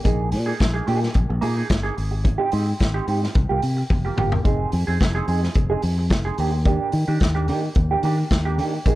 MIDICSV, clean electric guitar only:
0, 0, Header, 1, 3, 480
1, 0, Start_track
1, 0, Tempo, 550459
1, 42, Time_signature, 4, 2, 24, 8
1, 7806, End_track
2, 0, Start_track
2, 0, Title_t, "Clean electric guitar"
2, 0, Program_c, 0, 27
2, 35, Note_on_c, 0, 58, 73
2, 41, Note_on_c, 0, 63, 70
2, 47, Note_on_c, 0, 68, 78
2, 260, Note_off_c, 0, 58, 0
2, 263, Note_off_c, 0, 63, 0
2, 266, Note_off_c, 0, 68, 0
2, 401, Note_on_c, 0, 68, 64
2, 407, Note_on_c, 0, 63, 63
2, 414, Note_on_c, 0, 58, 55
2, 500, Note_off_c, 0, 58, 0
2, 507, Note_off_c, 0, 63, 0
2, 510, Note_off_c, 0, 68, 0
2, 641, Note_on_c, 0, 68, 64
2, 647, Note_on_c, 0, 63, 55
2, 654, Note_on_c, 0, 58, 52
2, 747, Note_off_c, 0, 58, 0
2, 752, Note_off_c, 0, 63, 0
2, 757, Note_on_c, 0, 58, 88
2, 759, Note_off_c, 0, 68, 0
2, 763, Note_on_c, 0, 63, 92
2, 769, Note_on_c, 0, 68, 89
2, 872, Note_off_c, 0, 68, 0
2, 883, Note_off_c, 0, 63, 0
2, 944, Note_off_c, 0, 58, 0
2, 1232, Note_on_c, 0, 58, 84
2, 1240, Note_on_c, 0, 63, 85
2, 1245, Note_on_c, 0, 68, 91
2, 1353, Note_off_c, 0, 68, 0
2, 1360, Note_off_c, 0, 63, 0
2, 1364, Note_off_c, 0, 58, 0
2, 1364, Note_on_c, 0, 68, 74
2, 1370, Note_on_c, 0, 63, 58
2, 1375, Note_on_c, 0, 58, 56
2, 1462, Note_off_c, 0, 58, 0
2, 1467, Note_off_c, 0, 63, 0
2, 1472, Note_off_c, 0, 68, 0
2, 1599, Note_on_c, 0, 68, 87
2, 1608, Note_on_c, 0, 63, 73
2, 1613, Note_on_c, 0, 58, 62
2, 1709, Note_off_c, 0, 63, 0
2, 1711, Note_off_c, 0, 58, 0
2, 1718, Note_off_c, 0, 68, 0
2, 2076, Note_on_c, 0, 67, 80
2, 2085, Note_on_c, 0, 63, 71
2, 2088, Note_on_c, 0, 60, 65
2, 2184, Note_off_c, 0, 60, 0
2, 2190, Note_off_c, 0, 63, 0
2, 2194, Note_on_c, 0, 60, 60
2, 2195, Note_off_c, 0, 67, 0
2, 2200, Note_on_c, 0, 63, 63
2, 2205, Note_on_c, 0, 67, 66
2, 2310, Note_off_c, 0, 67, 0
2, 2317, Note_off_c, 0, 63, 0
2, 2346, Note_off_c, 0, 60, 0
2, 2566, Note_on_c, 0, 67, 80
2, 2570, Note_on_c, 0, 63, 59
2, 2577, Note_on_c, 0, 60, 64
2, 2667, Note_off_c, 0, 60, 0
2, 2675, Note_off_c, 0, 63, 0
2, 2677, Note_on_c, 0, 60, 61
2, 2681, Note_off_c, 0, 67, 0
2, 2686, Note_on_c, 0, 63, 64
2, 2691, Note_on_c, 0, 67, 67
2, 2795, Note_off_c, 0, 67, 0
2, 2805, Note_off_c, 0, 63, 0
2, 2828, Note_off_c, 0, 60, 0
2, 3046, Note_on_c, 0, 67, 65
2, 3053, Note_on_c, 0, 65, 61
2, 3059, Note_on_c, 0, 58, 56
2, 3148, Note_off_c, 0, 58, 0
2, 3152, Note_off_c, 0, 65, 0
2, 3155, Note_off_c, 0, 67, 0
2, 3530, Note_on_c, 0, 67, 53
2, 3536, Note_on_c, 0, 65, 46
2, 3541, Note_on_c, 0, 58, 48
2, 3626, Note_off_c, 0, 58, 0
2, 3634, Note_off_c, 0, 65, 0
2, 3636, Note_on_c, 0, 58, 91
2, 3639, Note_off_c, 0, 67, 0
2, 3644, Note_on_c, 0, 65, 81
2, 3650, Note_on_c, 0, 67, 103
2, 3759, Note_off_c, 0, 67, 0
2, 3767, Note_off_c, 0, 65, 0
2, 3824, Note_off_c, 0, 58, 0
2, 3874, Note_on_c, 0, 60, 69
2, 3880, Note_on_c, 0, 63, 66
2, 3886, Note_on_c, 0, 68, 70
2, 4101, Note_off_c, 0, 60, 0
2, 4104, Note_off_c, 0, 63, 0
2, 4107, Note_off_c, 0, 68, 0
2, 4248, Note_on_c, 0, 68, 62
2, 4255, Note_on_c, 0, 63, 52
2, 4259, Note_on_c, 0, 60, 46
2, 4350, Note_off_c, 0, 60, 0
2, 4356, Note_off_c, 0, 63, 0
2, 4359, Note_off_c, 0, 68, 0
2, 4489, Note_on_c, 0, 68, 86
2, 4496, Note_on_c, 0, 63, 78
2, 4502, Note_on_c, 0, 60, 69
2, 4585, Note_off_c, 0, 60, 0
2, 4595, Note_off_c, 0, 63, 0
2, 4596, Note_on_c, 0, 60, 57
2, 4598, Note_off_c, 0, 68, 0
2, 4606, Note_on_c, 0, 63, 67
2, 4609, Note_on_c, 0, 68, 64
2, 4721, Note_off_c, 0, 68, 0
2, 4729, Note_off_c, 0, 63, 0
2, 4747, Note_off_c, 0, 60, 0
2, 4968, Note_on_c, 0, 68, 78
2, 4977, Note_on_c, 0, 63, 65
2, 4982, Note_on_c, 0, 60, 64
2, 5075, Note_off_c, 0, 60, 0
2, 5078, Note_off_c, 0, 63, 0
2, 5083, Note_off_c, 0, 68, 0
2, 5450, Note_on_c, 0, 68, 73
2, 5458, Note_on_c, 0, 63, 63
2, 5464, Note_on_c, 0, 60, 52
2, 5565, Note_off_c, 0, 60, 0
2, 5568, Note_on_c, 0, 58, 68
2, 5573, Note_off_c, 0, 63, 0
2, 5576, Note_on_c, 0, 62, 66
2, 5577, Note_off_c, 0, 68, 0
2, 5581, Note_on_c, 0, 67, 78
2, 5682, Note_off_c, 0, 67, 0
2, 5694, Note_off_c, 0, 62, 0
2, 5714, Note_off_c, 0, 58, 0
2, 5802, Note_on_c, 0, 58, 75
2, 5809, Note_on_c, 0, 62, 89
2, 5814, Note_on_c, 0, 67, 86
2, 6025, Note_off_c, 0, 58, 0
2, 6028, Note_off_c, 0, 62, 0
2, 6031, Note_off_c, 0, 67, 0
2, 6171, Note_on_c, 0, 67, 65
2, 6178, Note_on_c, 0, 62, 61
2, 6183, Note_on_c, 0, 58, 49
2, 6274, Note_off_c, 0, 58, 0
2, 6278, Note_off_c, 0, 62, 0
2, 6282, Note_off_c, 0, 67, 0
2, 6408, Note_on_c, 0, 67, 75
2, 6416, Note_on_c, 0, 62, 75
2, 6420, Note_on_c, 0, 58, 71
2, 6516, Note_off_c, 0, 58, 0
2, 6524, Note_off_c, 0, 62, 0
2, 6526, Note_off_c, 0, 67, 0
2, 6526, Note_on_c, 0, 58, 64
2, 6535, Note_on_c, 0, 62, 63
2, 6537, Note_on_c, 0, 67, 69
2, 6645, Note_off_c, 0, 67, 0
2, 6651, Note_off_c, 0, 62, 0
2, 6673, Note_off_c, 0, 58, 0
2, 6897, Note_on_c, 0, 67, 62
2, 6904, Note_on_c, 0, 62, 54
2, 6907, Note_on_c, 0, 58, 47
2, 7000, Note_off_c, 0, 58, 0
2, 7006, Note_off_c, 0, 62, 0
2, 7010, Note_on_c, 0, 58, 72
2, 7011, Note_off_c, 0, 67, 0
2, 7017, Note_on_c, 0, 62, 80
2, 7021, Note_on_c, 0, 67, 95
2, 7125, Note_off_c, 0, 67, 0
2, 7135, Note_off_c, 0, 62, 0
2, 7191, Note_off_c, 0, 58, 0
2, 7372, Note_on_c, 0, 67, 83
2, 7380, Note_on_c, 0, 62, 76
2, 7387, Note_on_c, 0, 58, 67
2, 7478, Note_off_c, 0, 58, 0
2, 7482, Note_off_c, 0, 62, 0
2, 7488, Note_on_c, 0, 58, 57
2, 7491, Note_off_c, 0, 67, 0
2, 7493, Note_on_c, 0, 62, 65
2, 7501, Note_on_c, 0, 67, 64
2, 7607, Note_off_c, 0, 67, 0
2, 7616, Note_off_c, 0, 62, 0
2, 7633, Note_off_c, 0, 58, 0
2, 7730, Note_on_c, 0, 58, 91
2, 7737, Note_on_c, 0, 63, 80
2, 7743, Note_on_c, 0, 68, 81
2, 7806, Note_off_c, 0, 58, 0
2, 7806, Note_off_c, 0, 63, 0
2, 7806, Note_off_c, 0, 68, 0
2, 7806, End_track
3, 0, Start_track
3, 0, Title_t, "Muted clean electric guitar strokes"
3, 275, Note_on_c, 9, 29, 43
3, 362, Note_off_c, 9, 29, 0
3, 510, Note_on_c, 9, 29, 40
3, 598, Note_off_c, 9, 29, 0
3, 883, Note_on_c, 9, 29, 51
3, 970, Note_off_c, 9, 29, 0
3, 999, Note_on_c, 9, 29, 45
3, 1086, Note_off_c, 9, 29, 0
3, 1130, Note_on_c, 9, 29, 43
3, 1217, Note_off_c, 9, 29, 0
3, 1472, Note_on_c, 9, 29, 43
3, 1559, Note_off_c, 9, 29, 0
3, 1715, Note_on_c, 9, 29, 34
3, 1802, Note_off_c, 9, 29, 0
3, 1842, Note_on_c, 9, 29, 43
3, 1929, Note_off_c, 9, 29, 0
3, 1956, Note_on_c, 9, 29, 39
3, 2043, Note_off_c, 9, 29, 0
3, 2321, Note_on_c, 9, 29, 47
3, 2408, Note_off_c, 9, 29, 0
3, 2435, Note_on_c, 9, 29, 30
3, 2522, Note_off_c, 9, 29, 0
3, 2806, Note_on_c, 9, 29, 50
3, 2893, Note_off_c, 9, 29, 0
3, 2920, Note_on_c, 9, 29, 37
3, 3007, Note_off_c, 9, 29, 0
3, 3158, Note_on_c, 9, 29, 40
3, 3245, Note_off_c, 9, 29, 0
3, 3287, Note_on_c, 9, 29, 43
3, 3374, Note_off_c, 9, 29, 0
3, 3400, Note_on_c, 9, 29, 42
3, 3488, Note_off_c, 9, 29, 0
3, 3769, Note_on_c, 9, 29, 34
3, 3856, Note_off_c, 9, 29, 0
3, 4125, Note_on_c, 9, 29, 38
3, 4212, Note_off_c, 9, 29, 0
3, 4360, Note_on_c, 9, 29, 39
3, 4447, Note_off_c, 9, 29, 0
3, 4732, Note_on_c, 9, 29, 49
3, 4819, Note_off_c, 9, 29, 0
3, 4843, Note_on_c, 9, 29, 38
3, 4930, Note_off_c, 9, 29, 0
3, 5086, Note_on_c, 9, 29, 41
3, 5173, Note_off_c, 9, 29, 0
3, 5215, Note_on_c, 9, 29, 35
3, 5302, Note_off_c, 9, 29, 0
3, 5326, Note_on_c, 9, 29, 44
3, 5414, Note_off_c, 9, 29, 0
3, 5692, Note_on_c, 9, 29, 39
3, 5780, Note_off_c, 9, 29, 0
3, 6284, Note_on_c, 9, 29, 44
3, 6371, Note_off_c, 9, 29, 0
3, 6655, Note_on_c, 9, 29, 42
3, 6742, Note_off_c, 9, 29, 0
3, 6766, Note_on_c, 9, 29, 47
3, 6853, Note_off_c, 9, 29, 0
3, 7136, Note_on_c, 9, 29, 36
3, 7223, Note_off_c, 9, 29, 0
3, 7251, Note_on_c, 9, 29, 34
3, 7338, Note_off_c, 9, 29, 0
3, 7617, Note_on_c, 9, 29, 36
3, 7705, Note_off_c, 9, 29, 0
3, 7806, End_track
0, 0, End_of_file